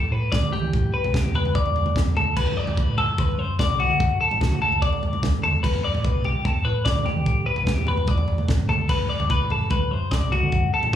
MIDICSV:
0, 0, Header, 1, 4, 480
1, 0, Start_track
1, 0, Tempo, 408163
1, 857, Time_signature, 4, 2, 24, 8
1, 12887, End_track
2, 0, Start_track
2, 0, Title_t, "Clean electric guitar"
2, 0, Program_c, 0, 27
2, 0, Note_on_c, 0, 69, 76
2, 142, Note_off_c, 0, 69, 0
2, 142, Note_on_c, 0, 71, 78
2, 374, Note_on_c, 0, 74, 79
2, 379, Note_off_c, 0, 71, 0
2, 616, Note_off_c, 0, 74, 0
2, 617, Note_on_c, 0, 67, 80
2, 1099, Note_off_c, 0, 67, 0
2, 1101, Note_on_c, 0, 71, 79
2, 1342, Note_off_c, 0, 71, 0
2, 1342, Note_on_c, 0, 67, 82
2, 1581, Note_off_c, 0, 67, 0
2, 1592, Note_on_c, 0, 71, 85
2, 1821, Note_off_c, 0, 71, 0
2, 1825, Note_on_c, 0, 74, 82
2, 2305, Note_off_c, 0, 74, 0
2, 2550, Note_on_c, 0, 69, 76
2, 2784, Note_on_c, 0, 71, 92
2, 2787, Note_off_c, 0, 69, 0
2, 3022, Note_off_c, 0, 71, 0
2, 3022, Note_on_c, 0, 74, 82
2, 3274, Note_off_c, 0, 74, 0
2, 3274, Note_on_c, 0, 71, 77
2, 3498, Note_off_c, 0, 71, 0
2, 3503, Note_on_c, 0, 69, 83
2, 3751, Note_off_c, 0, 69, 0
2, 3751, Note_on_c, 0, 71, 77
2, 3985, Note_off_c, 0, 71, 0
2, 3985, Note_on_c, 0, 72, 77
2, 4222, Note_off_c, 0, 72, 0
2, 4226, Note_on_c, 0, 74, 80
2, 4464, Note_on_c, 0, 66, 79
2, 4468, Note_off_c, 0, 74, 0
2, 4942, Note_off_c, 0, 66, 0
2, 4947, Note_on_c, 0, 69, 77
2, 5183, Note_off_c, 0, 69, 0
2, 5183, Note_on_c, 0, 66, 77
2, 5425, Note_off_c, 0, 66, 0
2, 5430, Note_on_c, 0, 69, 79
2, 5668, Note_on_c, 0, 74, 78
2, 5670, Note_off_c, 0, 69, 0
2, 6149, Note_off_c, 0, 74, 0
2, 6392, Note_on_c, 0, 69, 77
2, 6621, Note_on_c, 0, 71, 86
2, 6631, Note_off_c, 0, 69, 0
2, 6866, Note_off_c, 0, 71, 0
2, 6873, Note_on_c, 0, 74, 79
2, 7111, Note_off_c, 0, 74, 0
2, 7111, Note_on_c, 0, 71, 72
2, 7350, Note_off_c, 0, 71, 0
2, 7352, Note_on_c, 0, 67, 75
2, 7586, Note_off_c, 0, 67, 0
2, 7586, Note_on_c, 0, 69, 80
2, 7818, Note_on_c, 0, 71, 76
2, 7827, Note_off_c, 0, 69, 0
2, 8050, Note_off_c, 0, 71, 0
2, 8055, Note_on_c, 0, 74, 79
2, 8296, Note_on_c, 0, 67, 79
2, 8302, Note_off_c, 0, 74, 0
2, 8771, Note_off_c, 0, 67, 0
2, 8776, Note_on_c, 0, 71, 77
2, 9024, Note_off_c, 0, 71, 0
2, 9024, Note_on_c, 0, 67, 74
2, 9265, Note_off_c, 0, 67, 0
2, 9269, Note_on_c, 0, 71, 80
2, 9505, Note_off_c, 0, 71, 0
2, 9505, Note_on_c, 0, 74, 81
2, 9984, Note_off_c, 0, 74, 0
2, 10220, Note_on_c, 0, 69, 78
2, 10458, Note_on_c, 0, 71, 91
2, 10461, Note_off_c, 0, 69, 0
2, 10691, Note_off_c, 0, 71, 0
2, 10696, Note_on_c, 0, 74, 82
2, 10938, Note_off_c, 0, 74, 0
2, 10943, Note_on_c, 0, 71, 81
2, 11181, Note_off_c, 0, 71, 0
2, 11190, Note_on_c, 0, 69, 80
2, 11419, Note_on_c, 0, 71, 84
2, 11424, Note_off_c, 0, 69, 0
2, 11657, Note_off_c, 0, 71, 0
2, 11657, Note_on_c, 0, 72, 75
2, 11892, Note_off_c, 0, 72, 0
2, 11892, Note_on_c, 0, 74, 83
2, 12133, Note_off_c, 0, 74, 0
2, 12138, Note_on_c, 0, 66, 80
2, 12614, Note_off_c, 0, 66, 0
2, 12627, Note_on_c, 0, 69, 75
2, 12859, Note_off_c, 0, 69, 0
2, 12887, End_track
3, 0, Start_track
3, 0, Title_t, "Picked electric bass"
3, 0, Program_c, 1, 34
3, 124, Note_on_c, 1, 45, 92
3, 459, Note_off_c, 1, 45, 0
3, 489, Note_on_c, 1, 38, 90
3, 712, Note_off_c, 1, 38, 0
3, 729, Note_on_c, 1, 52, 87
3, 842, Note_off_c, 1, 52, 0
3, 862, Note_on_c, 1, 45, 107
3, 1080, Note_off_c, 1, 45, 0
3, 1222, Note_on_c, 1, 35, 77
3, 1331, Note_off_c, 1, 35, 0
3, 1460, Note_on_c, 1, 40, 84
3, 1680, Note_off_c, 1, 40, 0
3, 1826, Note_on_c, 1, 40, 98
3, 2263, Note_off_c, 1, 40, 0
3, 2301, Note_on_c, 1, 40, 99
3, 2522, Note_off_c, 1, 40, 0
3, 2534, Note_on_c, 1, 38, 91
3, 2648, Note_off_c, 1, 38, 0
3, 2783, Note_on_c, 1, 38, 93
3, 3147, Note_off_c, 1, 38, 0
3, 3147, Note_on_c, 1, 42, 81
3, 3256, Note_off_c, 1, 42, 0
3, 3382, Note_on_c, 1, 33, 85
3, 3603, Note_off_c, 1, 33, 0
3, 3742, Note_on_c, 1, 38, 108
3, 3854, Note_off_c, 1, 38, 0
3, 3971, Note_on_c, 1, 42, 93
3, 4308, Note_off_c, 1, 42, 0
3, 4342, Note_on_c, 1, 36, 86
3, 4564, Note_off_c, 1, 36, 0
3, 4583, Note_on_c, 1, 50, 87
3, 4695, Note_off_c, 1, 50, 0
3, 4707, Note_on_c, 1, 42, 109
3, 4928, Note_off_c, 1, 42, 0
3, 5062, Note_on_c, 1, 33, 81
3, 5175, Note_off_c, 1, 33, 0
3, 5298, Note_on_c, 1, 38, 80
3, 5523, Note_off_c, 1, 38, 0
3, 5675, Note_on_c, 1, 38, 91
3, 6112, Note_off_c, 1, 38, 0
3, 6147, Note_on_c, 1, 38, 78
3, 6365, Note_off_c, 1, 38, 0
3, 6390, Note_on_c, 1, 40, 75
3, 6606, Note_off_c, 1, 40, 0
3, 6628, Note_on_c, 1, 40, 93
3, 6989, Note_off_c, 1, 40, 0
3, 6989, Note_on_c, 1, 45, 82
3, 7099, Note_off_c, 1, 45, 0
3, 7221, Note_on_c, 1, 35, 79
3, 7444, Note_off_c, 1, 35, 0
3, 7586, Note_on_c, 1, 40, 106
3, 7697, Note_off_c, 1, 40, 0
3, 7822, Note_on_c, 1, 45, 91
3, 8154, Note_off_c, 1, 45, 0
3, 8178, Note_on_c, 1, 38, 97
3, 8402, Note_off_c, 1, 38, 0
3, 8421, Note_on_c, 1, 52, 82
3, 8534, Note_off_c, 1, 52, 0
3, 8541, Note_on_c, 1, 45, 102
3, 8763, Note_off_c, 1, 45, 0
3, 8901, Note_on_c, 1, 35, 78
3, 9014, Note_off_c, 1, 35, 0
3, 9146, Note_on_c, 1, 40, 85
3, 9365, Note_off_c, 1, 40, 0
3, 9496, Note_on_c, 1, 40, 100
3, 9938, Note_off_c, 1, 40, 0
3, 9979, Note_on_c, 1, 33, 86
3, 10200, Note_off_c, 1, 33, 0
3, 10216, Note_on_c, 1, 38, 94
3, 10329, Note_off_c, 1, 38, 0
3, 10458, Note_on_c, 1, 38, 103
3, 10809, Note_off_c, 1, 38, 0
3, 10809, Note_on_c, 1, 42, 81
3, 10924, Note_off_c, 1, 42, 0
3, 11063, Note_on_c, 1, 33, 81
3, 11280, Note_off_c, 1, 33, 0
3, 11416, Note_on_c, 1, 38, 103
3, 11526, Note_off_c, 1, 38, 0
3, 11659, Note_on_c, 1, 42, 90
3, 11986, Note_off_c, 1, 42, 0
3, 12013, Note_on_c, 1, 36, 91
3, 12233, Note_off_c, 1, 36, 0
3, 12262, Note_on_c, 1, 50, 80
3, 12368, Note_off_c, 1, 50, 0
3, 12375, Note_on_c, 1, 42, 104
3, 12593, Note_off_c, 1, 42, 0
3, 12746, Note_on_c, 1, 33, 84
3, 12849, Note_off_c, 1, 33, 0
3, 12887, End_track
4, 0, Start_track
4, 0, Title_t, "Drums"
4, 381, Note_on_c, 9, 36, 114
4, 382, Note_on_c, 9, 43, 90
4, 391, Note_on_c, 9, 38, 79
4, 499, Note_off_c, 9, 36, 0
4, 499, Note_off_c, 9, 43, 0
4, 509, Note_off_c, 9, 38, 0
4, 627, Note_on_c, 9, 43, 80
4, 627, Note_on_c, 9, 47, 73
4, 745, Note_off_c, 9, 43, 0
4, 745, Note_off_c, 9, 47, 0
4, 864, Note_on_c, 9, 36, 97
4, 867, Note_on_c, 9, 43, 78
4, 982, Note_off_c, 9, 36, 0
4, 985, Note_off_c, 9, 43, 0
4, 1228, Note_on_c, 9, 43, 78
4, 1343, Note_on_c, 9, 36, 109
4, 1345, Note_off_c, 9, 43, 0
4, 1345, Note_on_c, 9, 47, 78
4, 1355, Note_on_c, 9, 38, 81
4, 1460, Note_off_c, 9, 36, 0
4, 1463, Note_off_c, 9, 47, 0
4, 1469, Note_on_c, 9, 47, 81
4, 1472, Note_off_c, 9, 38, 0
4, 1586, Note_on_c, 9, 43, 80
4, 1587, Note_off_c, 9, 47, 0
4, 1704, Note_off_c, 9, 43, 0
4, 1709, Note_on_c, 9, 43, 75
4, 1824, Note_off_c, 9, 43, 0
4, 1824, Note_on_c, 9, 36, 105
4, 1824, Note_on_c, 9, 43, 78
4, 1941, Note_off_c, 9, 43, 0
4, 1942, Note_off_c, 9, 36, 0
4, 1949, Note_on_c, 9, 43, 77
4, 2066, Note_off_c, 9, 43, 0
4, 2068, Note_on_c, 9, 43, 78
4, 2185, Note_on_c, 9, 47, 78
4, 2186, Note_off_c, 9, 43, 0
4, 2302, Note_off_c, 9, 47, 0
4, 2303, Note_on_c, 9, 36, 112
4, 2306, Note_on_c, 9, 43, 87
4, 2315, Note_on_c, 9, 38, 83
4, 2420, Note_off_c, 9, 36, 0
4, 2423, Note_off_c, 9, 43, 0
4, 2433, Note_off_c, 9, 38, 0
4, 2547, Note_on_c, 9, 43, 85
4, 2547, Note_on_c, 9, 47, 72
4, 2664, Note_off_c, 9, 43, 0
4, 2664, Note_off_c, 9, 47, 0
4, 2781, Note_on_c, 9, 43, 77
4, 2781, Note_on_c, 9, 49, 84
4, 2783, Note_on_c, 9, 36, 94
4, 2898, Note_off_c, 9, 43, 0
4, 2898, Note_off_c, 9, 49, 0
4, 2901, Note_off_c, 9, 36, 0
4, 2903, Note_on_c, 9, 43, 85
4, 3021, Note_off_c, 9, 43, 0
4, 3144, Note_on_c, 9, 43, 78
4, 3262, Note_off_c, 9, 43, 0
4, 3262, Note_on_c, 9, 47, 84
4, 3263, Note_on_c, 9, 36, 114
4, 3380, Note_off_c, 9, 36, 0
4, 3380, Note_off_c, 9, 47, 0
4, 3504, Note_on_c, 9, 43, 86
4, 3621, Note_off_c, 9, 43, 0
4, 3744, Note_on_c, 9, 36, 114
4, 3745, Note_on_c, 9, 43, 84
4, 3862, Note_off_c, 9, 36, 0
4, 3863, Note_off_c, 9, 43, 0
4, 4225, Note_on_c, 9, 36, 118
4, 4225, Note_on_c, 9, 43, 89
4, 4234, Note_on_c, 9, 38, 85
4, 4342, Note_off_c, 9, 43, 0
4, 4343, Note_off_c, 9, 36, 0
4, 4352, Note_off_c, 9, 38, 0
4, 4468, Note_on_c, 9, 43, 81
4, 4468, Note_on_c, 9, 47, 73
4, 4586, Note_off_c, 9, 43, 0
4, 4586, Note_off_c, 9, 47, 0
4, 4707, Note_on_c, 9, 36, 100
4, 4707, Note_on_c, 9, 43, 75
4, 4824, Note_off_c, 9, 36, 0
4, 4824, Note_off_c, 9, 43, 0
4, 5072, Note_on_c, 9, 43, 81
4, 5190, Note_off_c, 9, 43, 0
4, 5190, Note_on_c, 9, 36, 113
4, 5194, Note_on_c, 9, 47, 83
4, 5203, Note_on_c, 9, 38, 76
4, 5307, Note_off_c, 9, 36, 0
4, 5311, Note_off_c, 9, 47, 0
4, 5312, Note_on_c, 9, 47, 80
4, 5321, Note_off_c, 9, 38, 0
4, 5430, Note_off_c, 9, 47, 0
4, 5430, Note_on_c, 9, 43, 79
4, 5547, Note_off_c, 9, 43, 0
4, 5554, Note_on_c, 9, 43, 73
4, 5672, Note_off_c, 9, 43, 0
4, 5672, Note_on_c, 9, 36, 105
4, 5675, Note_on_c, 9, 43, 85
4, 5790, Note_off_c, 9, 36, 0
4, 5793, Note_off_c, 9, 43, 0
4, 5794, Note_on_c, 9, 43, 70
4, 5912, Note_off_c, 9, 43, 0
4, 5914, Note_on_c, 9, 43, 80
4, 6031, Note_off_c, 9, 43, 0
4, 6033, Note_on_c, 9, 47, 76
4, 6150, Note_off_c, 9, 47, 0
4, 6151, Note_on_c, 9, 36, 112
4, 6152, Note_on_c, 9, 43, 90
4, 6161, Note_on_c, 9, 38, 79
4, 6269, Note_off_c, 9, 36, 0
4, 6270, Note_off_c, 9, 43, 0
4, 6279, Note_off_c, 9, 38, 0
4, 6395, Note_on_c, 9, 43, 81
4, 6395, Note_on_c, 9, 47, 76
4, 6512, Note_off_c, 9, 43, 0
4, 6512, Note_off_c, 9, 47, 0
4, 6632, Note_on_c, 9, 36, 92
4, 6633, Note_on_c, 9, 43, 74
4, 6633, Note_on_c, 9, 57, 84
4, 6749, Note_off_c, 9, 36, 0
4, 6751, Note_off_c, 9, 43, 0
4, 6751, Note_off_c, 9, 57, 0
4, 6751, Note_on_c, 9, 43, 83
4, 6868, Note_off_c, 9, 43, 0
4, 6992, Note_on_c, 9, 43, 84
4, 7108, Note_on_c, 9, 47, 80
4, 7110, Note_off_c, 9, 43, 0
4, 7110, Note_on_c, 9, 36, 112
4, 7226, Note_off_c, 9, 47, 0
4, 7227, Note_off_c, 9, 36, 0
4, 7344, Note_on_c, 9, 43, 84
4, 7461, Note_off_c, 9, 43, 0
4, 7586, Note_on_c, 9, 43, 86
4, 7587, Note_on_c, 9, 36, 101
4, 7703, Note_off_c, 9, 43, 0
4, 7704, Note_off_c, 9, 36, 0
4, 8061, Note_on_c, 9, 43, 87
4, 8064, Note_on_c, 9, 36, 109
4, 8071, Note_on_c, 9, 38, 80
4, 8179, Note_off_c, 9, 43, 0
4, 8181, Note_off_c, 9, 36, 0
4, 8188, Note_off_c, 9, 38, 0
4, 8301, Note_on_c, 9, 43, 78
4, 8301, Note_on_c, 9, 47, 73
4, 8418, Note_off_c, 9, 43, 0
4, 8418, Note_off_c, 9, 47, 0
4, 8540, Note_on_c, 9, 43, 74
4, 8542, Note_on_c, 9, 36, 92
4, 8658, Note_off_c, 9, 43, 0
4, 8659, Note_off_c, 9, 36, 0
4, 8893, Note_on_c, 9, 43, 85
4, 9011, Note_off_c, 9, 43, 0
4, 9014, Note_on_c, 9, 47, 75
4, 9019, Note_on_c, 9, 36, 102
4, 9023, Note_on_c, 9, 38, 75
4, 9131, Note_off_c, 9, 47, 0
4, 9135, Note_on_c, 9, 47, 78
4, 9137, Note_off_c, 9, 36, 0
4, 9141, Note_off_c, 9, 38, 0
4, 9252, Note_on_c, 9, 43, 84
4, 9253, Note_off_c, 9, 47, 0
4, 9370, Note_off_c, 9, 43, 0
4, 9377, Note_on_c, 9, 43, 74
4, 9492, Note_off_c, 9, 43, 0
4, 9492, Note_on_c, 9, 43, 85
4, 9498, Note_on_c, 9, 36, 114
4, 9609, Note_off_c, 9, 43, 0
4, 9615, Note_on_c, 9, 43, 72
4, 9616, Note_off_c, 9, 36, 0
4, 9732, Note_off_c, 9, 43, 0
4, 9734, Note_on_c, 9, 43, 81
4, 9851, Note_off_c, 9, 43, 0
4, 9857, Note_on_c, 9, 47, 75
4, 9975, Note_off_c, 9, 47, 0
4, 9976, Note_on_c, 9, 43, 96
4, 9978, Note_on_c, 9, 36, 118
4, 9986, Note_on_c, 9, 38, 82
4, 10094, Note_off_c, 9, 43, 0
4, 10096, Note_off_c, 9, 36, 0
4, 10103, Note_off_c, 9, 38, 0
4, 10217, Note_on_c, 9, 43, 79
4, 10217, Note_on_c, 9, 47, 73
4, 10335, Note_off_c, 9, 43, 0
4, 10335, Note_off_c, 9, 47, 0
4, 10456, Note_on_c, 9, 43, 75
4, 10456, Note_on_c, 9, 57, 84
4, 10458, Note_on_c, 9, 36, 95
4, 10571, Note_off_c, 9, 43, 0
4, 10571, Note_on_c, 9, 43, 76
4, 10573, Note_off_c, 9, 57, 0
4, 10575, Note_off_c, 9, 36, 0
4, 10688, Note_off_c, 9, 43, 0
4, 10817, Note_on_c, 9, 43, 83
4, 10932, Note_on_c, 9, 47, 80
4, 10935, Note_off_c, 9, 43, 0
4, 10937, Note_on_c, 9, 36, 114
4, 11049, Note_off_c, 9, 47, 0
4, 11054, Note_off_c, 9, 36, 0
4, 11175, Note_on_c, 9, 43, 80
4, 11293, Note_off_c, 9, 43, 0
4, 11411, Note_on_c, 9, 43, 86
4, 11415, Note_on_c, 9, 36, 104
4, 11529, Note_off_c, 9, 43, 0
4, 11533, Note_off_c, 9, 36, 0
4, 11893, Note_on_c, 9, 43, 91
4, 11896, Note_on_c, 9, 36, 114
4, 11902, Note_on_c, 9, 38, 82
4, 12010, Note_off_c, 9, 43, 0
4, 12013, Note_off_c, 9, 36, 0
4, 12020, Note_off_c, 9, 38, 0
4, 12142, Note_on_c, 9, 43, 84
4, 12142, Note_on_c, 9, 47, 76
4, 12260, Note_off_c, 9, 43, 0
4, 12260, Note_off_c, 9, 47, 0
4, 12372, Note_on_c, 9, 43, 78
4, 12377, Note_on_c, 9, 36, 88
4, 12490, Note_off_c, 9, 43, 0
4, 12494, Note_off_c, 9, 36, 0
4, 12735, Note_on_c, 9, 43, 84
4, 12853, Note_off_c, 9, 43, 0
4, 12887, End_track
0, 0, End_of_file